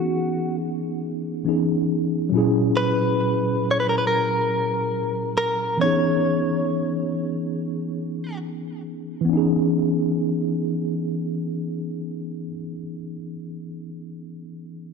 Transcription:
0, 0, Header, 1, 3, 480
1, 0, Start_track
1, 0, Tempo, 869565
1, 1285, Time_signature, 4, 2, 24, 8
1, 8243, End_track
2, 0, Start_track
2, 0, Title_t, "Clean electric guitar"
2, 0, Program_c, 0, 27
2, 0, Note_on_c, 0, 66, 76
2, 305, Note_off_c, 0, 66, 0
2, 1528, Note_on_c, 0, 71, 82
2, 2046, Note_off_c, 0, 71, 0
2, 2049, Note_on_c, 0, 73, 68
2, 2095, Note_off_c, 0, 73, 0
2, 2097, Note_on_c, 0, 71, 72
2, 2146, Note_off_c, 0, 71, 0
2, 2149, Note_on_c, 0, 70, 69
2, 2195, Note_off_c, 0, 70, 0
2, 2197, Note_on_c, 0, 71, 70
2, 2245, Note_off_c, 0, 71, 0
2, 2247, Note_on_c, 0, 70, 80
2, 2961, Note_off_c, 0, 70, 0
2, 2967, Note_on_c, 0, 70, 87
2, 3189, Note_off_c, 0, 70, 0
2, 3209, Note_on_c, 0, 73, 95
2, 4625, Note_off_c, 0, 73, 0
2, 8243, End_track
3, 0, Start_track
3, 0, Title_t, "Tine electric piano"
3, 0, Program_c, 1, 4
3, 0, Control_c, 1, 64, 127
3, 0, Note_on_c, 1, 52, 62
3, 0, Note_on_c, 1, 59, 60
3, 0, Note_on_c, 1, 61, 59
3, 0, Note_on_c, 1, 63, 57
3, 0, Note_on_c, 1, 68, 71
3, 773, Note_off_c, 1, 52, 0
3, 779, Note_off_c, 1, 59, 0
3, 784, Note_off_c, 1, 61, 0
3, 790, Note_off_c, 1, 63, 0
3, 796, Note_off_c, 1, 68, 0
3, 799, Note_on_c, 1, 52, 57
3, 804, Note_on_c, 1, 59, 50
3, 808, Note_on_c, 1, 61, 49
3, 815, Note_on_c, 1, 63, 50
3, 821, Note_on_c, 1, 68, 62
3, 1266, Note_on_c, 1, 54, 72
3, 1279, Note_on_c, 1, 46, 69
3, 1281, Note_off_c, 1, 52, 0
3, 1283, Note_off_c, 1, 61, 0
3, 1284, Note_off_c, 1, 59, 0
3, 1289, Note_on_c, 1, 61, 70
3, 1290, Note_off_c, 1, 63, 0
3, 1291, Control_c, 1, 64, 0
3, 1293, Note_off_c, 1, 68, 0
3, 1299, Note_on_c, 1, 64, 69
3, 1311, Note_on_c, 1, 68, 84
3, 1376, Control_c, 1, 64, 127
3, 3173, Note_off_c, 1, 54, 0
3, 3180, Note_off_c, 1, 46, 0
3, 3185, Note_off_c, 1, 61, 0
3, 3187, Note_on_c, 1, 52, 60
3, 3190, Note_off_c, 1, 64, 0
3, 3196, Note_off_c, 1, 68, 0
3, 3198, Note_on_c, 1, 59, 58
3, 3209, Note_on_c, 1, 61, 54
3, 3212, Control_c, 1, 64, 0
3, 3219, Note_on_c, 1, 63, 56
3, 3230, Note_on_c, 1, 68, 68
3, 3324, Control_c, 1, 64, 127
3, 5077, Note_off_c, 1, 52, 0
3, 5084, Note_on_c, 1, 52, 77
3, 5099, Note_off_c, 1, 59, 0
3, 5105, Note_off_c, 1, 61, 0
3, 5106, Note_on_c, 1, 59, 65
3, 5110, Note_off_c, 1, 63, 0
3, 5115, Note_off_c, 1, 68, 0
3, 5129, Note_on_c, 1, 61, 69
3, 5131, Control_c, 1, 64, 0
3, 5151, Note_on_c, 1, 63, 67
3, 5173, Note_on_c, 1, 68, 76
3, 5216, Control_c, 1, 64, 127
3, 6869, Note_off_c, 1, 52, 0
3, 6892, Note_off_c, 1, 59, 0
3, 6915, Note_off_c, 1, 61, 0
3, 6936, Note_off_c, 1, 63, 0
3, 6959, Note_off_c, 1, 68, 0
3, 8243, End_track
0, 0, End_of_file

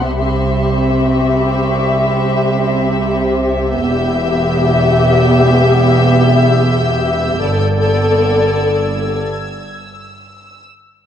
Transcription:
0, 0, Header, 1, 6, 480
1, 0, Start_track
1, 0, Tempo, 500000
1, 10620, End_track
2, 0, Start_track
2, 0, Title_t, "Violin section"
2, 0, Program_c, 0, 48
2, 0, Note_on_c, 0, 83, 24
2, 0, Note_on_c, 0, 84, 23
2, 807, Note_off_c, 0, 84, 0
2, 807, Note_on_c, 0, 85, 23
2, 2234, Note_off_c, 0, 85, 0
2, 3120, Note_off_c, 0, 83, 0
2, 3595, Note_on_c, 0, 91, 42
2, 3599, Note_on_c, 0, 88, 39
2, 7896, Note_off_c, 0, 91, 0
2, 7896, Note_on_c, 0, 92, 42
2, 9318, Note_off_c, 0, 92, 0
2, 10206, Note_off_c, 0, 88, 0
2, 10620, End_track
3, 0, Start_track
3, 0, Title_t, "Violin section"
3, 0, Program_c, 1, 48
3, 67, Note_on_c, 1, 76, 36
3, 3566, Note_off_c, 1, 76, 0
3, 3603, Note_on_c, 1, 76, 52
3, 7106, Note_off_c, 1, 76, 0
3, 7138, Note_on_c, 1, 74, 34
3, 8874, Note_off_c, 1, 74, 0
3, 10620, End_track
4, 0, Start_track
4, 0, Title_t, "Viola section"
4, 0, Program_c, 2, 48
4, 50, Note_on_c, 2, 60, 36
4, 51, Note_on_c, 2, 67, 35
4, 3558, Note_off_c, 2, 60, 0
4, 3558, Note_off_c, 2, 67, 0
4, 3590, Note_on_c, 2, 59, 52
4, 3591, Note_on_c, 2, 67, 50
4, 7100, Note_off_c, 2, 59, 0
4, 7100, Note_off_c, 2, 67, 0
4, 7134, Note_on_c, 2, 69, 38
4, 7135, Note_on_c, 2, 59, 35
4, 8872, Note_off_c, 2, 59, 0
4, 8872, Note_off_c, 2, 69, 0
4, 10620, End_track
5, 0, Start_track
5, 0, Title_t, "Cello section"
5, 0, Program_c, 3, 48
5, 63, Note_on_c, 3, 48, 38
5, 3564, Note_off_c, 3, 48, 0
5, 3593, Note_on_c, 3, 40, 50
5, 7138, Note_on_c, 3, 43, 36
5, 7140, Note_off_c, 3, 40, 0
5, 8877, Note_off_c, 3, 43, 0
5, 10620, End_track
6, 0, Start_track
6, 0, Title_t, "Double bass section"
6, 0, Program_c, 4, 48
6, 48, Note_on_c, 4, 36, 38
6, 3557, Note_off_c, 4, 36, 0
6, 3591, Note_on_c, 4, 28, 50
6, 7136, Note_on_c, 4, 31, 35
6, 7139, Note_off_c, 4, 28, 0
6, 8876, Note_off_c, 4, 31, 0
6, 10620, End_track
0, 0, End_of_file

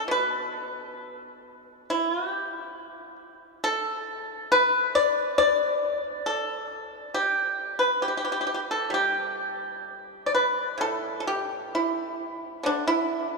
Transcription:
0, 0, Header, 1, 2, 480
1, 0, Start_track
1, 0, Tempo, 875912
1, 58, Time_signature, 4, 2, 24, 8
1, 4377, Tempo, 927357
1, 7168, End_track
2, 0, Start_track
2, 0, Title_t, "Pipa"
2, 0, Program_c, 0, 105
2, 43, Note_on_c, 0, 47, 44
2, 62, Note_on_c, 0, 71, 72
2, 1011, Note_off_c, 0, 71, 0
2, 1041, Note_on_c, 0, 64, 66
2, 1261, Note_off_c, 0, 64, 0
2, 1261, Note_on_c, 0, 67, 66
2, 1501, Note_off_c, 0, 47, 0
2, 1729, Note_off_c, 0, 67, 0
2, 1993, Note_on_c, 0, 69, 82
2, 2441, Note_off_c, 0, 69, 0
2, 2475, Note_on_c, 0, 71, 83
2, 2687, Note_off_c, 0, 71, 0
2, 2713, Note_on_c, 0, 74, 80
2, 2926, Note_off_c, 0, 74, 0
2, 2949, Note_on_c, 0, 74, 88
2, 3399, Note_off_c, 0, 74, 0
2, 3431, Note_on_c, 0, 69, 66
2, 3883, Note_off_c, 0, 69, 0
2, 3915, Note_on_c, 0, 67, 67
2, 4246, Note_off_c, 0, 67, 0
2, 4269, Note_on_c, 0, 71, 60
2, 4377, Note_off_c, 0, 71, 0
2, 4395, Note_on_c, 0, 67, 57
2, 4419, Note_off_c, 0, 67, 0
2, 4425, Note_on_c, 0, 67, 42
2, 4457, Note_off_c, 0, 67, 0
2, 4474, Note_on_c, 0, 67, 47
2, 4501, Note_off_c, 0, 67, 0
2, 4511, Note_on_c, 0, 67, 44
2, 4539, Note_off_c, 0, 67, 0
2, 4549, Note_on_c, 0, 67, 49
2, 4577, Note_off_c, 0, 67, 0
2, 4595, Note_on_c, 0, 67, 40
2, 4619, Note_off_c, 0, 67, 0
2, 4625, Note_on_c, 0, 67, 48
2, 4654, Note_off_c, 0, 67, 0
2, 4665, Note_on_c, 0, 67, 41
2, 4694, Note_off_c, 0, 67, 0
2, 4751, Note_on_c, 0, 69, 54
2, 4850, Note_on_c, 0, 55, 42
2, 4852, Note_off_c, 0, 69, 0
2, 4870, Note_on_c, 0, 67, 54
2, 5553, Note_off_c, 0, 67, 0
2, 5555, Note_on_c, 0, 74, 44
2, 5592, Note_off_c, 0, 74, 0
2, 5597, Note_on_c, 0, 71, 61
2, 5818, Note_off_c, 0, 55, 0
2, 5819, Note_off_c, 0, 71, 0
2, 5821, Note_on_c, 0, 45, 46
2, 5837, Note_on_c, 0, 69, 76
2, 6023, Note_off_c, 0, 69, 0
2, 6041, Note_on_c, 0, 69, 48
2, 6075, Note_off_c, 0, 69, 0
2, 6078, Note_on_c, 0, 67, 62
2, 6298, Note_off_c, 0, 67, 0
2, 6324, Note_on_c, 0, 64, 62
2, 6773, Note_off_c, 0, 64, 0
2, 6781, Note_off_c, 0, 45, 0
2, 6782, Note_on_c, 0, 50, 47
2, 6796, Note_on_c, 0, 62, 72
2, 6902, Note_off_c, 0, 62, 0
2, 6907, Note_on_c, 0, 64, 64
2, 7168, Note_off_c, 0, 50, 0
2, 7168, Note_off_c, 0, 64, 0
2, 7168, End_track
0, 0, End_of_file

